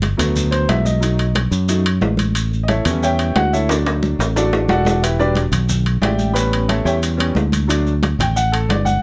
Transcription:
Already playing: G1
0.02 high conga, high timbale, low timbale, maracas
0.17 D2 F#3 A3 B3, high conga, low conga, high timbale, maracas
0.36 high conga, low conga, maracas
0.51 C5, high conga, high timbale, maracas
0.69 B1 E5, high conga, high timbale, low timbale, maracas
0.85 D#5, high conga, maracas
1.01 F#3 A3 D#4, high conga, high timbale, maracas
1.19 high conga, high timbale, maracas
1.35 high conga, high timbale, low timbale, maracas
1.51 F#2, maracas
1.68 F#3 A3 D#4, high conga, high timbale, maracas
1.84 high conga, high timbale, maracas
2.01 A1, high conga, low timbale, maracas
2.17 high conga, high timbale, maracas
2.35 high conga, high timbale, maracas
2.52 high conga, maracas
2.63 D#5
2.68 E4 A4 C#5 E5, high conga, high timbale, low timbale, maracas
2.85 E2 G3 B3 C#4, high conga, low conga, high timbale, maracas
3.02 G4 C#5 E5 G5, high conga, maracas
3.19 high conga, high timbale, maracas
3.36 D2 F#4 F#5, high conga, high timbale, low timbale, maracas
3.53 E4 A4 C#5 E5, maracas
3.69 F#3 A3 D4, high conga, high timbale, maracas
3.86 high conga, high timbale, maracas
4.03 high conga, maracas
4.19 A1, high timbale, maracas
4.36 F#3 A3 D4 F#4 A4 D5, high conga, low timbale, maracas
4.53 high conga, low timbale, maracas
4.69 E1 F#4 A4 D5 F#5, high conga, low timbale, maracas
4.85 high conga, low timbale, maracas
5.02 E4 G4 B4 E5, high conga, high timbale, maracas
5.19 F#3 G3 D4 G4 B4 D5, high conga, maracas
5.35 high conga, high timbale, low timbale, maracas
5.52 B1, high conga, low conga, high timbale, maracas
5.69 high conga, low conga, maracas
5.86 high conga, high timbale, maracas
6.02 A1 G4 D5 E5 G5, high conga, high timbale, low timbale, maracas
6.19 high conga, maracas
6.33 G3 B3 C#4 B4 B5, high timbale, maracas
6.53 high conga, high timbale, maracas
6.69 A4 C#5 E5 A5, high conga, high timbale, low timbale, maracas
6.85 E2 G4 C#5 E5 G5, maracas
7.03 high conga, high timbale, maracas
7.17 G3 B3 C#4, high conga, high timbale, maracas
7.35 D2, high conga, low timbale, maracas
7.52 high conga, high timbale, maracas
7.68 F#3 A3 D4, high timbale, maracas
7.86 high conga, maracas
8.03 high conga, high timbale, low timbale, maracas
8.19 A1 G5, high conga, low conga, high timbale, maracas
8.36 F#5, high conga, maracas
8.52 A4, high conga, high timbale, maracas
8.69 G1 D5, high conga, high timbale, low timbale, maracas
8.85 F#5, high conga, maracas

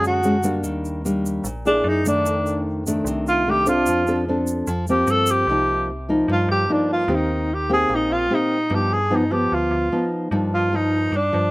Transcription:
Already playing: F#2 D3 G#3 C#4 F#4
0.04 F#4, shaker
0.23 G#3 C#4 F#4, shaker
0.43 G3 A#3 D4, shaker
0.63 D#2 D#3, shaker
0.85 shaker
1.05 G3 A#3 D4, shaker
1.26 shaker
1.44 A#1 A#2, shaker
1.65 A#3 D4 E4 G#4, shaker
1.84 F#2
1.88 D#4
2.05 D#3 A3 D4, shaker
2.24 F2, shaker
2.46 shaker
2.87 D#3 A3 D4, shaker
3.04 C2 C3, shaker
3.27 F4, shaker
3.47 D#3 A3 D4 G4
3.66 C4 D4 F4 A4, shaker
3.86 F2 F3, shaker
4.07 C4 D4 A4, shaker
4.28 C4 D4 A4
4.47 shaker
4.67 F2 F3, shaker
4.87 F3 A#3 C4 G4, shaker
5.07 G2 A4, shaker
5.26 shaker
5.31 G4
5.47 C2 C3 F3 A#3 D#4
6.09 F3 A#3 D#4
6.28 G2 F4
6.49 G2 G4
6.69 F3 A#3 D4 D#4
6.92 F4
7.08 D#2 D#3 A#3 C4 G4
7.14 D#4
7.54 G4
7.69 A#3 C4 G4 G#4
7.89 A#1 A#2
7.95 D#4
8.10 A#1 F4
8.30 A#3 C4 G4
8.34 D#4
8.70 G2 F3 B3 D#4
8.75 G4
8.93 G#4
9.10 F3 B3 D#4
9.16 D#4
9.31 F3 B3 G4
9.52 D2 F4
9.71 D2
9.92 F3 B3 D#4
10.31 G2 F3 A#3 D#4
10.54 F4
10.73 F3 A#3 D#4
11.12 G2
11.16 D4
11.33 G2 F3 A#3

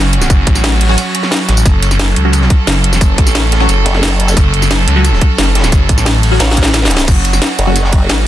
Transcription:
Already playing: F#1 F#3 C#4 F#4
0.13 closed hi-hat, ride
0.21 snare, tambourine
0.30 F#1, kick, closed hi-hat, ride, tambourine
0.47 A1, kick, closed hi-hat, ride, tambourine
0.55 snare, tambourine
0.64 snare, closed hi-hat, ride, tambourine
0.81 closed hi-hat, open hi-hat
0.89 F#3 C#4 F#4, snare
0.98 closed hi-hat, ride, tambourine
1.15 closed hi-hat, ride
1.23 snare
1.31 snare, closed hi-hat, ride, tambourine
1.41 snare
1.48 A1, snare, closed hi-hat, ride
1.57 tambourine
1.66 F#1 A4, kick, closed hi-hat, ride, tambourine
1.82 closed hi-hat, ride, tambourine
1.91 snare, tambourine
1.99 snare, closed hi-hat, ride, tambourine
2.16 C#2, closed hi-hat, ride
2.25 F#3 C#4 F#4
2.33 closed hi-hat, ride, tambourine
2.41 snare
2.50 kick, closed hi-hat, ride
2.67 F#1, snare, closed hi-hat, ride, tambourine
2.84 closed hi-hat, ride
2.93 snare, tambourine
3.01 F#1, kick, closed hi-hat, ride, tambourine
3.18 A1, kick, closed hi-hat, ride, tambourine
3.27 snare, tambourine
3.35 snare, closed hi-hat, ride, tambourine
3.52 snare, closed hi-hat, ride
3.60 F#3 C#4 F#4, snare, ride
3.69 F#1, closed hi-hat, ride, tambourine
3.86 F#1, snare, closed hi-hat, ride
3.94 snare
4.03 snare, closed hi-hat, ride, tambourine
4.11 snare
4.20 snare, closed hi-hat, ride
4.28 snare, ride, tambourine
4.37 F#1, kick, closed hi-hat, ride, tambourine
4.53 closed hi-hat, ride, tambourine
4.62 snare, tambourine
4.70 snare, closed hi-hat, ride, tambourine
4.87 C#2, closed hi-hat, ride
4.96 F#3 C#4 F#4
5.04 closed hi-hat, ride, tambourine
5.13 snare
5.21 kick, closed hi-hat, ride
5.38 F#1, snare, closed hi-hat, ride, tambourine
5.55 snare, closed hi-hat, ride
5.59 snare, ride
5.63 snare, ride, tambourine
5.72 F#1, kick, closed hi-hat, ride, tambourine
5.89 A1, kick, closed hi-hat, ride, tambourine
5.98 snare, tambourine
6.05 snare, closed hi-hat, ride, tambourine
6.23 closed hi-hat, open hi-hat, tambourine
6.31 F#3 C#4 F#4, snare
6.39 A1, snare, closed hi-hat, ride, tambourine
6.51 snare
6.57 kick, snare, closed hi-hat, ride
6.63 snare, ride
6.66 snare
6.73 snare, closed hi-hat, ride, tambourine
6.83 snare, ride
6.85 snare
6.91 snare, closed hi-hat, ride
6.97 snare
6.99 snare, ride, tambourine
7.07 F#1 F#3 C#4 F#4, kick, closed hi-hat, crash, ride, tambourine
7.24 closed hi-hat, ride, tambourine
7.33 snare, tambourine
7.42 snare, closed hi-hat, ride, tambourine
7.59 F#1, closed hi-hat, ride
7.67 F#3 C#4 F#4
7.76 closed hi-hat, ride, tambourine
7.84 snare
7.92 kick, closed hi-hat, ride
8.09 G#1, snare, closed hi-hat, ride, tambourine

